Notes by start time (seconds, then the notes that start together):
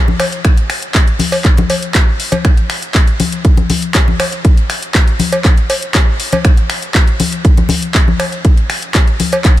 0.08 high conga
0.20 finger snap, open hi-hat, cowbell
0.32 closed hi-hat
0.45 finger snap, kick, closed hi-hat
0.57 closed hi-hat
0.70 finger snap, open hi-hat
0.82 closed hi-hat
0.95 kick, clap, closed hi-hat
1.07 closed hi-hat
1.19 open hi-hat, high conga
1.32 open hi-hat, cowbell
1.45 kick, clap, closed hi-hat
1.57 closed hi-hat, high conga
1.70 open hi-hat, cowbell
1.82 closed hi-hat
1.95 kick, clap, closed hi-hat
2.20 open hi-hat
2.32 closed hi-hat, cowbell, high conga
2.45 finger snap, kick, closed hi-hat
2.57 closed hi-hat
2.70 finger snap, open hi-hat
2.82 closed hi-hat
2.95 kick, clap, closed hi-hat
3.07 closed hi-hat
3.20 open hi-hat, high conga
3.32 closed hi-hat
3.45 kick, closed hi-hat
3.57 closed hi-hat, high conga
3.70 open hi-hat, high conga
3.82 closed hi-hat
3.95 kick, clap, closed hi-hat
4.08 high conga
4.20 finger snap, open hi-hat, cowbell
4.32 closed hi-hat
4.45 kick, closed hi-hat
4.57 closed hi-hat
4.70 finger snap, open hi-hat
4.83 closed hi-hat
4.95 kick, clap, closed hi-hat
5.08 closed hi-hat
5.19 open hi-hat, high conga
5.32 closed hi-hat, cowbell
5.45 kick, clap, closed hi-hat
5.58 closed hi-hat
5.70 open hi-hat, cowbell
5.82 closed hi-hat
5.95 kick, clap, closed hi-hat
6.20 open hi-hat
6.32 closed hi-hat, cowbell, high conga
6.45 finger snap, kick, closed hi-hat
6.57 closed hi-hat
6.70 finger snap, open hi-hat
6.82 closed hi-hat
6.95 kick, clap, closed hi-hat
7.07 closed hi-hat
7.20 open hi-hat, high conga
7.32 closed hi-hat
7.45 kick, closed hi-hat
7.57 closed hi-hat, high conga
7.69 open hi-hat, high conga
7.82 closed hi-hat
7.95 kick, clap, closed hi-hat
8.08 high conga
8.19 finger snap, open hi-hat, cowbell
8.32 closed hi-hat
8.45 kick, closed hi-hat
8.57 closed hi-hat
8.70 finger snap, open hi-hat
8.82 closed hi-hat
8.95 kick, clap, closed hi-hat
9.07 closed hi-hat
9.20 open hi-hat, high conga
9.32 closed hi-hat, cowbell
9.45 kick, clap, closed hi-hat